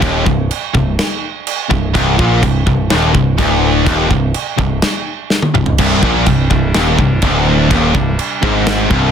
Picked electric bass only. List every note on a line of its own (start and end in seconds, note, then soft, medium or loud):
0.02 0.24 D#1 loud
0.27 0.49 C1 medium
0.75 0.97 C1 medium
1.71 1.93 C1 medium
1.96 2.17 C1 loud
2.19 2.41 A#1 loud
2.43 2.65 C1 medium
2.67 2.89 C1 medium
2.92 3.14 D#1 loud
3.15 3.37 C1 medium
3.39 3.83 D1 medium
3.86 4.09 D#1 loud
4.11 4.33 C1 medium
4.59 4.81 C1 medium
5.55 5.77 C1 medium
5.79 6.01 C1 loud
6.03 6.25 A#1 medium
6.27 6.49 C1 medium
6.51 6.73 C1 medium
6.75 6.97 D#1 loud
6.99 7.21 C1 medium
7.23 7.67 D1 loud
7.71 7.93 D#1 loud
7.95 8.17 C1 medium
8.43 8.88 G#1 loud
8.91 9.11 C1 loud